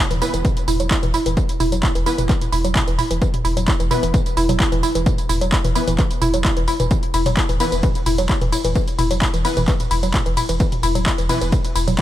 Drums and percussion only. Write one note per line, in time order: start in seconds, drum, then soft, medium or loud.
0.11 closed hi-hat medium
0.11 mid tom medium
0.11 tambourine soft
0.22 open hi-hat loud
0.22 tambourine medium
0.34 closed hi-hat medium
0.34 tambourine soft
0.45 kick loud
0.45 closed hi-hat medium
0.45 mid tom medium
0.45 tambourine soft
0.57 closed hi-hat medium
0.57 tambourine soft
0.68 mid tom medium
0.68 open hi-hat loud
0.68 tambourine medium
0.80 closed hi-hat medium
0.80 tambourine soft
0.91 kick loud
0.91 clap loud
0.91 closed hi-hat medium
0.91 tambourine soft
1.03 closed hi-hat medium
1.03 mid tom medium
1.14 open hi-hat loud
1.14 tambourine medium
1.26 closed hi-hat medium
1.26 mid tom medium
1.26 tambourine soft
1.37 kick loud
1.37 closed hi-hat medium
1.37 tambourine soft
1.49 closed hi-hat medium
1.49 tambourine soft
1.60 mid tom medium
1.60 open hi-hat loud
1.60 tambourine medium
1.72 closed hi-hat medium
1.72 tambourine soft
1.83 kick loud
1.83 clap loud
1.83 closed hi-hat medium
1.83 mid tom medium
1.83 tambourine soft
1.95 closed hi-hat medium
1.95 tambourine soft
2.06 open hi-hat loud
2.06 tambourine medium
2.18 closed hi-hat medium
2.18 mid tom medium
2.18 tambourine soft
2.29 kick loud
2.29 clap medium
2.29 closed hi-hat medium
2.29 tambourine soft
2.41 closed hi-hat medium
2.41 mid tom medium
2.41 tambourine soft
2.52 open hi-hat loud
2.52 tambourine medium
2.65 closed hi-hat medium
2.65 tambourine soft
2.75 kick loud
2.75 clap loud
2.75 closed hi-hat medium
2.75 mid tom medium
2.75 tambourine soft
2.88 closed hi-hat medium
2.99 mid tom medium
2.99 open hi-hat loud
2.99 tambourine medium
3.11 closed hi-hat medium
3.11 tambourine soft
3.22 kick loud
3.22 closed hi-hat medium
3.22 tambourine soft
3.34 closed hi-hat medium
3.34 mid tom medium
3.45 open hi-hat loud
3.45 tambourine medium
3.57 closed hi-hat medium
3.57 mid tom medium
3.57 tambourine soft
3.68 kick loud
3.68 clap loud
3.68 closed hi-hat medium
3.68 tambourine soft
3.80 closed hi-hat medium
3.80 tambourine soft
3.91 mid tom loud
3.91 open hi-hat loud
3.91 tambourine medium
4.03 closed hi-hat medium
4.03 tambourine soft
4.14 kick loud
4.14 closed hi-hat medium
4.14 mid tom medium
4.14 tambourine soft
4.26 closed hi-hat medium
4.26 tambourine soft
4.37 open hi-hat loud
4.37 tambourine medium
4.49 closed hi-hat medium
4.49 mid tom medium
4.49 tambourine soft
4.60 kick loud
4.60 clap loud
4.60 closed hi-hat medium
4.60 tambourine soft
4.72 closed hi-hat medium
4.72 mid tom medium
4.83 open hi-hat loud
4.83 tambourine medium
4.95 closed hi-hat medium
4.95 tambourine soft
5.06 kick loud
5.06 closed hi-hat medium
5.06 mid tom loud
5.06 tambourine soft
5.18 closed hi-hat medium
5.18 tambourine soft
5.29 mid tom medium
5.29 open hi-hat loud
5.29 tambourine medium
5.41 closed hi-hat medium
5.41 tambourine soft
5.52 kick loud
5.52 clap loud
5.52 closed hi-hat medium
5.52 tambourine soft
5.64 closed hi-hat medium
5.64 mid tom loud
5.64 tambourine soft
5.75 open hi-hat loud
5.75 tambourine medium
5.88 closed hi-hat medium
5.88 mid tom medium
5.88 tambourine soft
5.99 kick loud
5.99 clap medium
5.99 closed hi-hat medium
5.99 tambourine soft
6.11 closed hi-hat medium
6.11 tambourine soft
6.22 mid tom loud
6.22 open hi-hat loud
6.22 tambourine medium
6.34 closed hi-hat medium
6.34 tambourine soft
6.45 kick loud
6.45 clap loud
6.45 closed hi-hat medium
6.45 mid tom medium
6.45 tambourine soft
6.57 closed hi-hat medium
6.68 open hi-hat loud
6.68 tambourine medium
6.80 closed hi-hat medium
6.80 mid tom loud
6.80 tambourine soft
6.91 kick loud
6.91 closed hi-hat medium
6.91 mid tom medium
6.91 tambourine soft
7.03 closed hi-hat medium
7.14 open hi-hat loud
7.14 ride medium
7.14 tambourine medium
7.26 closed hi-hat medium
7.26 mid tom loud
7.26 tambourine soft
7.37 kick loud
7.37 clap loud
7.37 closed hi-hat medium
7.37 tambourine soft
7.49 closed hi-hat medium
7.49 mid tom medium
7.49 tambourine soft
7.60 open hi-hat loud
7.60 ride medium
7.60 tambourine medium
7.72 closed hi-hat medium
7.72 tambourine soft
7.83 kick loud
7.83 closed hi-hat medium
7.83 mid tom loud
7.83 tambourine soft
7.95 closed hi-hat medium
7.95 tambourine soft
8.06 mid tom medium
8.06 open hi-hat loud
8.06 ride medium
8.06 tambourine medium
8.18 closed hi-hat medium
8.18 tambourine soft
8.29 kick loud
8.29 clap loud
8.29 closed hi-hat medium
8.29 tambourine soft
8.41 closed hi-hat medium
8.41 mid tom loud
8.52 open hi-hat loud
8.52 ride medium
8.52 tambourine medium
8.65 closed hi-hat medium
8.65 mid tom medium
8.65 tambourine soft
8.75 kick loud
8.75 closed hi-hat medium
8.75 tambourine soft
8.88 closed hi-hat medium
8.88 tambourine soft
8.99 mid tom medium
8.99 open hi-hat loud
8.99 ride medium
8.99 tambourine medium
9.11 closed hi-hat medium
9.11 tambourine soft
9.22 kick loud
9.22 clap loud
9.22 closed hi-hat medium
9.22 mid tom medium
9.22 tambourine soft
9.34 closed hi-hat medium
9.34 tambourine soft
9.45 open hi-hat loud
9.45 ride medium
9.45 tambourine medium
9.57 closed hi-hat medium
9.57 mid tom loud
9.57 tambourine soft
9.68 kick loud
9.68 clap medium
9.68 closed hi-hat medium
9.68 tambourine soft
9.80 closed hi-hat medium
9.80 mid tom medium
9.80 tambourine soft
9.91 open hi-hat loud
9.91 ride medium
9.91 tambourine medium
10.03 closed hi-hat medium
10.03 tambourine soft
10.14 kick loud
10.14 clap loud
10.14 closed hi-hat medium
10.14 mid tom medium
10.14 tambourine soft
10.26 closed hi-hat medium
10.37 mid tom medium
10.37 open hi-hat loud
10.37 ride medium
10.37 tambourine medium
10.49 closed hi-hat medium
10.49 tambourine soft
10.60 kick loud
10.60 closed hi-hat medium
10.60 tambourine soft
10.72 closed hi-hat medium
10.72 mid tom medium
10.83 open hi-hat loud
10.83 ride medium
10.83 tambourine medium
10.95 closed hi-hat medium
10.95 mid tom medium
10.95 tambourine soft
11.06 kick loud
11.06 clap loud
11.06 closed hi-hat medium
11.06 tambourine soft
11.18 closed hi-hat medium
11.18 tambourine soft
11.29 mid tom medium
11.29 open hi-hat loud
11.29 ride medium
11.29 tambourine medium
11.41 closed hi-hat medium
11.41 tambourine soft
11.52 kick loud
11.52 closed hi-hat medium
11.52 mid tom medium
11.52 tambourine soft
11.65 closed hi-hat medium
11.65 tambourine soft
11.76 open hi-hat loud
11.76 ride medium
11.76 tambourine medium
11.88 closed hi-hat medium
11.88 mid tom medium
11.88 tambourine soft